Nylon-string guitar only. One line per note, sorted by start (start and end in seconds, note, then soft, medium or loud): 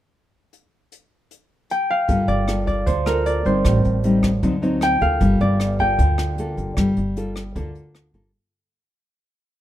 2.08 2.85 G3 soft
2.08 2.44 A#3 soft
2.08 2.44 F4 soft
2.08 2.45 A4 soft
2.48 2.87 A#3 soft
2.48 2.87 F4 soft
2.48 2.87 A4 soft
2.87 3.63 D3 soft
3.06 3.42 A#3 medium
3.06 3.43 F4 medium
3.06 3.43 A4 medium
3.45 4.00 G3 medium
3.45 4.01 C4 soft
3.45 4.01 D#4 medium
3.65 4.41 A2 soft
4.04 4.30 G3 soft
4.04 4.30 C4 soft
4.04 4.30 D#4 soft
4.43 5.19 D3 soft
4.43 4.54 F#3 soft
4.43 4.55 C4 soft
4.43 4.55 D#4 medium
4.62 4.98 F#3 medium
4.62 4.98 C4 medium
4.62 4.98 D#4 medium
5.01 5.57 A#3 medium
5.01 5.57 F4 medium
5.01 5.57 A4 medium
5.20 5.97 G3 soft
5.80 6.35 A#3 medium
5.80 6.35 F4 medium
5.80 6.36 A4 medium
5.99 6.75 D3 soft
6.38 6.91 A#3 soft
6.38 6.91 F4 soft
6.38 6.92 A4 medium
6.78 7.54 G3 soft
7.16 7.42 A#3 soft
7.16 7.42 F4 soft
7.16 7.42 A4 medium
7.56 8.32 D3 soft
7.56 8.11 A#3 soft
7.56 8.11 F4 soft
7.56 8.12 A4 soft
8.14 8.31 A#3 medium
8.14 8.31 F4 soft
8.14 8.31 A4 medium